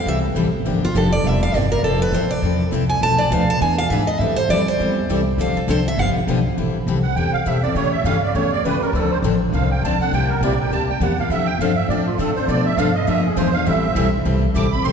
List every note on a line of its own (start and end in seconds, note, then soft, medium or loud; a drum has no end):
0.06 0.34 C2 medium
0.06 0.25 E3 medium
0.06 0.25 G3 medium
0.06 0.26 C4 medium
0.06 0.26 E4 medium
0.06 0.26 A4 medium
0.06 0.18 E5 medium
0.35 0.64 A1 medium
0.35 0.46 E3 medium
0.35 0.46 G3 medium
0.35 0.46 C4 medium
0.35 0.46 E4 medium
0.35 0.47 A4 medium
0.65 0.94 G1 medium
0.65 0.84 D3 medium
0.65 0.85 F3 medium
0.65 0.85 A#3 medium
0.65 0.85 D4 medium
0.65 0.85 G4 medium
0.85 0.95 F4 medium
0.94 1.23 F1 medium
0.94 1.05 D3 medium
0.94 1.06 F3 medium
0.94 1.06 A#3 loud
0.94 1.06 D4 loud
0.94 1.06 G4 loud
0.94 1.13 A4 medium
1.12 1.27 D5 loud
1.24 1.53 E1 medium
1.24 1.44 C3 medium
1.24 1.44 G3 medium
1.24 1.44 A#3 medium
1.24 1.44 E4 medium
1.24 1.44 G4 medium
1.24 1.42 E5 medium
1.43 1.56 F5 loud
1.54 1.82 G1 medium
1.54 1.65 C3 medium
1.54 1.65 G3 medium
1.54 1.65 A#3 loud
1.54 1.65 E4 medium
1.54 1.65 G4 medium
1.54 1.71 D5 medium
1.72 1.83 A#4 loud
1.83 2.12 F1 medium
1.83 2.03 F3 medium
1.83 2.04 C4 medium
1.83 2.04 E4 medium
1.83 2.00 A4 medium
1.83 2.04 A4 medium
2.02 2.13 B4 loud
2.12 2.41 A1 medium
2.12 2.24 F3 loud
2.12 2.24 C4 loud
2.12 2.24 E4 loud
2.12 2.25 A4 loud
2.12 2.30 C5 medium
2.31 2.70 D5 loud
2.42 2.71 E2 medium
2.42 2.62 F3 medium
2.42 2.62 C4 medium
2.42 2.63 E4 medium
2.42 2.63 A4 medium
2.72 3.01 C2 medium
2.72 2.83 F3 medium
2.72 2.83 C4 medium
2.72 2.83 E4 loud
2.72 2.84 A4 loud
2.89 3.01 G#5 medium
3.01 3.30 B1 medium
3.01 3.21 B2 medium
3.01 3.21 F3 medium
3.01 3.22 A3 medium
3.01 3.22 D4 medium
3.01 3.22 A4 medium
3.01 3.21 B4 medium
3.01 3.19 A5 loud
3.18 3.31 D5 medium
3.31 3.60 D2 loud
3.31 3.42 B2 loud
3.31 3.42 F3 loud
3.31 3.42 A3 loud
3.31 3.43 D4 loud
3.31 3.43 A4 loud
3.31 3.42 B4 medium
3.31 3.48 F5 medium
3.50 3.61 A5 loud
3.61 3.89 E2 medium
3.61 3.80 E3 medium
3.61 3.80 B3 medium
3.61 3.80 D4 medium
3.61 3.81 G#4 medium
3.61 3.81 B4 medium
3.61 3.78 G#5 medium
3.78 3.90 F5 loud
3.90 4.19 G#2 medium
3.90 4.02 E3 medium
3.90 4.02 B3 medium
3.90 4.02 D4 medium
3.90 4.02 G#4 loud
3.90 4.02 B4 medium
3.90 4.07 E5 medium
4.07 4.19 D#5 medium
4.19 4.36 A2 medium
4.19 4.39 E3 medium
4.19 4.40 G3 medium
4.19 4.40 C4 medium
4.19 4.40 E4 medium
4.19 4.40 A4 medium
4.19 4.36 E5 loud
4.36 4.49 C5 loud
4.36 muted upright bass stroke soft
4.49 4.78 F2 medium
4.49 4.60 E3 loud
4.49 4.61 G3 loud
4.49 4.61 C4 loud
4.49 4.61 E4 loud
4.49 4.61 A4 loud
4.49 4.67 D5 loud
4.68 5.07 C5 medium
4.79 5.08 E2 medium
4.79 4.99 E3 medium
4.79 4.99 G3 medium
4.79 4.99 C4 medium
4.79 4.99 E4 medium
4.79 5.00 A4 medium
5.09 5.37 C2 medium
5.09 5.20 E3 loud
5.09 5.20 G3 loud
5.09 5.20 C4 loud
5.09 5.20 E4 loud
5.09 5.20 A4 loud
5.38 5.54 D2 medium
5.38 5.58 D3 medium
5.38 5.58 F3 medium
5.38 5.58 C4 medium
5.38 5.58 D4 medium
5.38 5.58 A4 medium
5.38 5.56 F5 medium
5.55 5.70 A4 medium
5.55 muted upright bass stroke soft
5.68 5.97 C2 loud
5.68 5.79 D3 loud
5.68 5.79 F3 medium
5.68 5.79 C4 loud
5.68 5.79 D4 loud
5.68 5.79 A4 loud
5.68 5.86 C5 medium
5.88 5.99 E5 loud
5.98 6.14 G1 loud
5.98 6.17 D3 medium
5.98 6.17 F3 medium
5.98 6.18 B3 medium
5.98 6.18 D4 medium
5.98 6.18 G4 medium
5.98 6.09 F5 medium
6.15 muted upright bass stroke soft
6.27 6.56 B1 loud
6.27 6.38 D3 medium
6.27 6.38 F3 loud
6.27 6.38 B3 loud
6.27 6.39 D4 loud
6.27 6.39 G4 loud
6.57 6.86 A1 medium
6.57 6.76 E3 medium
6.57 6.76 G3 medium
6.57 6.76 C4 medium
6.57 6.77 E4 medium
6.57 6.77 A4 medium
6.87 7.15 C2 medium
6.87 6.98 E3 medium
6.87 6.98 G3 medium
6.87 6.98 C4 medium
6.87 6.98 E4 loud
6.87 6.98 A4 loud
7.03 7.15 F#5 medium
7.15 7.32 E2 medium
7.15 7.36 E3 medium
7.15 7.36 G3 medium
7.15 7.36 C4 medium
7.15 7.36 E4 medium
7.15 7.36 A4 medium
7.15 7.32 G5 loud
7.33 7.45 F5 loud
7.33 muted upright bass stroke soft
7.46 7.74 B2 medium
7.46 7.56 E3 medium
7.46 7.56 G3 medium
7.46 7.57 C4 medium
7.46 7.57 E4 medium
7.46 7.57 A4 loud
7.46 7.63 E5 medium
7.63 7.76 C4 soft
7.63 7.76 E4 medium
7.63 7.75 A4 medium
7.63 7.75 D5 medium
7.75 8.03 A2 medium
7.75 7.94 C#3 medium
7.75 7.95 E3 medium
7.75 7.95 A3 medium
7.75 7.95 C#4 medium
7.75 7.95 G4 medium
7.75 7.92 C#5 medium
7.92 8.04 E5 loud
8.04 8.33 G2 medium
8.04 8.15 C#3 loud
8.04 8.16 E3 medium
8.04 8.16 A3 loud
8.04 8.16 C#4 loud
8.04 8.16 G4 loud
8.04 8.22 F5 loud
8.23 8.35 D5 medium
8.35 8.63 E2 medium
8.35 8.54 C#3 medium
8.35 8.54 E3 medium
8.35 8.54 A3 medium
8.35 8.54 C#4 medium
8.35 8.54 G4 medium
8.35 8.51 C#5 medium
8.52 8.64 D5 loud
8.64 8.80 C#2 medium
8.64 8.75 C#3 medium
8.64 8.75 E3 loud
8.64 8.75 A3 medium
8.64 8.75 C#4 medium
8.64 8.76 G4 loud
8.64 8.81 B4 medium
8.80 8.94 C#4 medium
8.80 8.94 G4 medium
8.80 8.94 A#4 medium
8.80 muted upright bass stroke soft
8.84 8.95 A3 medium
8.93 9.22 D2 medium
8.93 9.13 D3 medium
8.93 9.13 F3 medium
8.93 9.14 C4 medium
8.93 9.14 D4 medium
8.93 9.11 A4 medium
8.93 9.14 A4 medium
9.11 9.19 C5 loud
9.22 9.52 A1 loud
9.22 9.34 D3 medium
9.22 9.34 F3 loud
9.22 9.34 C4 loud
9.22 9.34 D4 loud
9.22 9.35 A4 loud
9.52 9.81 C2 medium
9.52 9.72 D3 medium
9.52 9.72 F3 medium
9.52 9.73 C4 medium
9.52 9.73 D4 medium
9.52 9.73 A4 medium
9.52 9.70 F5 medium
9.72 9.83 G5 medium
9.82 9.98 D2 medium
9.82 9.94 D3 medium
9.82 9.94 F3 medium
9.82 9.94 C4 loud
9.82 9.94 D4 loud
9.82 9.94 A4 medium
9.82 10.00 A5 loud
9.98 10.13 D4 medium
9.98 10.12 A4 medium
9.98 10.12 F#5 loud
9.98 muted upright bass stroke soft
10.03 10.13 C4 soft
10.11 10.40 C2 medium
10.11 10.31 C3 medium
10.11 10.32 G3 medium
10.11 10.32 A#3 medium
10.11 10.32 E4 medium
10.11 10.32 G4 medium
10.11 10.29 G5 loud
10.30 10.42 A#4 medium
10.41 10.70 A#1 medium
10.41 10.53 C3 loud
10.41 10.53 G3 loud
10.41 10.53 A#3 loud
10.41 10.53 E4 loud
10.41 10.53 G4 loud
10.41 10.59 D5 medium
10.60 10.72 G5 medium
10.71 10.99 D2 medium
10.71 10.91 C3 medium
10.71 10.91 G3 medium
10.71 10.91 A#3 medium
10.71 10.91 E4 medium
10.71 10.91 G4 medium
10.71 10.88 A5 loud
10.90 11.01 G5 medium
11.00 11.29 E2 medium
11.00 11.11 C3 medium
11.00 11.11 G3 medium
11.00 11.11 A#3 medium
11.00 11.12 E4 medium
11.00 11.12 G4 medium
11.00 11.18 F#5 medium
11.18 11.31 A#3 soft
11.18 11.30 E4 medium
11.18 11.30 G4 medium
11.18 11.31 F5 loud
11.29 11.58 F2 medium
11.29 11.50 F3 medium
11.29 11.50 C4 medium
11.29 11.50 D4 medium
11.29 11.50 A4 medium
11.29 11.47 E5 loud
11.46 11.59 G5 loud
11.59 11.88 G2 medium
11.59 11.71 F3 loud
11.59 11.71 C4 medium
11.59 11.71 D4 loud
11.59 11.71 A4 loud
11.59 11.76 F5 medium
11.76 11.88 E5 loud
11.89 12.18 A2 medium
11.89 12.09 F3 medium
11.89 12.09 C4 medium
11.89 12.09 D4 medium
11.89 12.09 A4 medium
11.89 12.05 D5 medium
12.07 12.19 F4 medium
12.18 12.47 D3 medium
12.18 12.29 F3 medium
12.18 12.30 C4 loud
12.18 12.30 D4 medium
12.18 12.35 A4 medium
12.18 12.30 A4 medium
12.36 12.49 C4 soft
12.36 12.48 D4 medium
12.36 12.48 A4 medium
12.36 12.48 C5 medium
12.48 12.77 B2 medium
12.48 12.67 B2 medium
12.48 12.68 F3 medium
12.48 12.68 A3 medium
12.48 12.68 D4 medium
12.48 12.68 A4 medium
12.48 12.68 B4 medium
12.48 12.65 D5 loud
12.66 12.78 E5 loud
12.77 13.06 G2 loud
12.77 12.89 B2 loud
12.77 12.89 F3 loud
12.77 12.89 A3 loud
12.77 12.89 D4 loud
12.77 12.89 A4 loud
12.77 12.89 B4 loud
12.77 12.94 F5 loud
12.95 13.07 D#5 medium
13.07 13.36 F2 medium
13.07 13.27 D3 medium
13.07 13.26 F3 medium
13.07 13.26 G#3 medium
13.07 13.27 A#3 medium
13.07 13.26 D4 medium
13.07 13.27 F4 medium
13.07 13.27 G#4 medium
13.07 13.27 A#4 medium
13.07 13.24 E5 loud
13.26 13.37 G#4 medium
13.36 13.66 E2 loud
13.36 13.47 D3 medium
13.36 13.47 F3 loud
13.36 13.47 G#3 loud
13.36 13.47 A#3 medium
13.36 13.47 D4 medium
13.36 13.47 F4 loud
13.36 13.48 G#4 loud
13.36 13.48 A#4 loud
13.36 13.54 C5 medium
13.53 13.66 D4 medium
13.53 13.66 F4 medium
13.53 13.66 A#4 medium
13.53 13.66 F5 loud
13.66 13.95 A1 medium
13.66 13.85 E3 medium
13.66 13.85 G3 medium
13.66 13.85 C4 medium
13.66 13.85 E4 medium
13.66 13.86 A4 medium
13.66 14.10 E5 loud
13.95 14.24 B1 loud
13.95 14.06 E3 loud
13.95 14.06 G3 loud
13.95 14.06 C4 loud
13.95 14.07 E4 loud
13.95 14.07 A4 loud
14.25 14.54 C2 medium
14.25 14.44 E3 medium
14.25 14.44 G3 medium
14.25 14.44 C4 medium
14.25 14.44 E4 medium
14.25 14.45 A4 medium
14.54 14.83 A1 medium
14.54 14.66 E3 loud
14.54 14.66 G3 loud
14.54 14.66 C4 medium
14.54 14.66 E4 loud
14.54 14.66 A4 loud
14.54 14.72 D6 loud
14.72 14.84 C4 medium
14.72 14.84 E4 medium
14.72 14.84 A4 medium
14.72 14.84 B5 loud
14.84 14.92 C2 medium
14.84 14.92 E3 medium
14.84 14.92 G3 medium
14.84 14.92 C4 medium
14.84 14.92 E4 medium
14.84 14.92 A4 medium
14.84 14.92 C6 loud